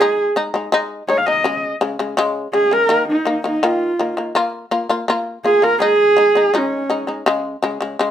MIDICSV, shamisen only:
0, 0, Header, 1, 2, 480
1, 0, Start_track
1, 0, Tempo, 726392
1, 959, Time_signature, 4, 2, 24, 8
1, 5358, End_track
2, 0, Start_track
2, 0, Title_t, "Shamisen"
2, 0, Program_c, 0, 106
2, 4, Note_on_c, 0, 56, 94
2, 10, Note_on_c, 0, 63, 112
2, 194, Note_off_c, 0, 56, 0
2, 197, Note_off_c, 0, 63, 0
2, 239, Note_on_c, 0, 56, 83
2, 243, Note_on_c, 0, 63, 96
2, 335, Note_off_c, 0, 56, 0
2, 338, Note_off_c, 0, 63, 0
2, 356, Note_on_c, 0, 56, 82
2, 367, Note_on_c, 0, 63, 87
2, 454, Note_off_c, 0, 56, 0
2, 460, Note_off_c, 0, 63, 0
2, 477, Note_on_c, 0, 56, 117
2, 487, Note_on_c, 0, 63, 122
2, 671, Note_off_c, 0, 56, 0
2, 675, Note_off_c, 0, 63, 0
2, 717, Note_on_c, 0, 56, 77
2, 724, Note_on_c, 0, 63, 77
2, 814, Note_off_c, 0, 56, 0
2, 818, Note_off_c, 0, 63, 0
2, 837, Note_on_c, 0, 56, 65
2, 844, Note_on_c, 0, 63, 71
2, 934, Note_off_c, 0, 56, 0
2, 938, Note_off_c, 0, 63, 0
2, 954, Note_on_c, 0, 49, 92
2, 961, Note_on_c, 0, 56, 105
2, 1148, Note_off_c, 0, 49, 0
2, 1152, Note_off_c, 0, 56, 0
2, 1196, Note_on_c, 0, 49, 92
2, 1203, Note_on_c, 0, 56, 93
2, 1294, Note_off_c, 0, 49, 0
2, 1297, Note_off_c, 0, 56, 0
2, 1317, Note_on_c, 0, 49, 78
2, 1322, Note_on_c, 0, 56, 82
2, 1414, Note_off_c, 0, 49, 0
2, 1416, Note_off_c, 0, 56, 0
2, 1435, Note_on_c, 0, 49, 110
2, 1444, Note_on_c, 0, 56, 127
2, 1629, Note_off_c, 0, 49, 0
2, 1633, Note_off_c, 0, 56, 0
2, 1675, Note_on_c, 0, 49, 67
2, 1679, Note_on_c, 0, 56, 76
2, 1773, Note_off_c, 0, 49, 0
2, 1775, Note_off_c, 0, 56, 0
2, 1793, Note_on_c, 0, 49, 64
2, 1801, Note_on_c, 0, 56, 73
2, 1892, Note_off_c, 0, 49, 0
2, 1896, Note_off_c, 0, 56, 0
2, 1910, Note_on_c, 0, 51, 97
2, 1917, Note_on_c, 0, 58, 105
2, 2106, Note_off_c, 0, 51, 0
2, 2109, Note_off_c, 0, 58, 0
2, 2151, Note_on_c, 0, 51, 67
2, 2158, Note_on_c, 0, 58, 86
2, 2250, Note_off_c, 0, 51, 0
2, 2254, Note_off_c, 0, 58, 0
2, 2274, Note_on_c, 0, 51, 73
2, 2283, Note_on_c, 0, 58, 76
2, 2372, Note_off_c, 0, 51, 0
2, 2377, Note_off_c, 0, 58, 0
2, 2398, Note_on_c, 0, 51, 98
2, 2402, Note_on_c, 0, 58, 98
2, 2590, Note_off_c, 0, 51, 0
2, 2592, Note_off_c, 0, 58, 0
2, 2640, Note_on_c, 0, 51, 66
2, 2647, Note_on_c, 0, 58, 81
2, 2735, Note_off_c, 0, 51, 0
2, 2738, Note_off_c, 0, 58, 0
2, 2756, Note_on_c, 0, 51, 61
2, 2764, Note_on_c, 0, 58, 67
2, 2853, Note_off_c, 0, 51, 0
2, 2857, Note_off_c, 0, 58, 0
2, 2875, Note_on_c, 0, 58, 106
2, 2883, Note_on_c, 0, 65, 120
2, 3068, Note_off_c, 0, 58, 0
2, 3072, Note_off_c, 0, 65, 0
2, 3115, Note_on_c, 0, 58, 94
2, 3118, Note_on_c, 0, 65, 93
2, 3212, Note_off_c, 0, 58, 0
2, 3214, Note_off_c, 0, 65, 0
2, 3234, Note_on_c, 0, 58, 78
2, 3240, Note_on_c, 0, 65, 97
2, 3332, Note_off_c, 0, 58, 0
2, 3335, Note_off_c, 0, 65, 0
2, 3358, Note_on_c, 0, 58, 111
2, 3368, Note_on_c, 0, 65, 115
2, 3550, Note_off_c, 0, 58, 0
2, 3555, Note_off_c, 0, 65, 0
2, 3598, Note_on_c, 0, 58, 66
2, 3605, Note_on_c, 0, 65, 74
2, 3694, Note_off_c, 0, 58, 0
2, 3697, Note_off_c, 0, 65, 0
2, 3715, Note_on_c, 0, 58, 71
2, 3723, Note_on_c, 0, 65, 70
2, 3812, Note_off_c, 0, 58, 0
2, 3816, Note_off_c, 0, 65, 0
2, 3834, Note_on_c, 0, 56, 92
2, 3844, Note_on_c, 0, 63, 104
2, 4028, Note_off_c, 0, 56, 0
2, 4033, Note_off_c, 0, 63, 0
2, 4075, Note_on_c, 0, 56, 74
2, 4083, Note_on_c, 0, 63, 82
2, 4172, Note_off_c, 0, 56, 0
2, 4176, Note_off_c, 0, 63, 0
2, 4199, Note_on_c, 0, 56, 74
2, 4206, Note_on_c, 0, 63, 79
2, 4294, Note_off_c, 0, 56, 0
2, 4298, Note_off_c, 0, 63, 0
2, 4319, Note_on_c, 0, 56, 96
2, 4326, Note_on_c, 0, 63, 99
2, 4511, Note_off_c, 0, 56, 0
2, 4514, Note_off_c, 0, 63, 0
2, 4557, Note_on_c, 0, 56, 75
2, 4562, Note_on_c, 0, 63, 79
2, 4653, Note_off_c, 0, 56, 0
2, 4656, Note_off_c, 0, 63, 0
2, 4674, Note_on_c, 0, 56, 62
2, 4681, Note_on_c, 0, 63, 68
2, 4772, Note_off_c, 0, 56, 0
2, 4776, Note_off_c, 0, 63, 0
2, 4799, Note_on_c, 0, 49, 112
2, 4808, Note_on_c, 0, 56, 127
2, 4991, Note_off_c, 0, 49, 0
2, 4995, Note_off_c, 0, 56, 0
2, 5039, Note_on_c, 0, 49, 86
2, 5046, Note_on_c, 0, 56, 104
2, 5134, Note_off_c, 0, 49, 0
2, 5138, Note_off_c, 0, 56, 0
2, 5158, Note_on_c, 0, 49, 79
2, 5168, Note_on_c, 0, 56, 91
2, 5254, Note_off_c, 0, 49, 0
2, 5259, Note_off_c, 0, 56, 0
2, 5283, Note_on_c, 0, 49, 103
2, 5291, Note_on_c, 0, 56, 117
2, 5358, Note_off_c, 0, 49, 0
2, 5358, Note_off_c, 0, 56, 0
2, 5358, End_track
0, 0, End_of_file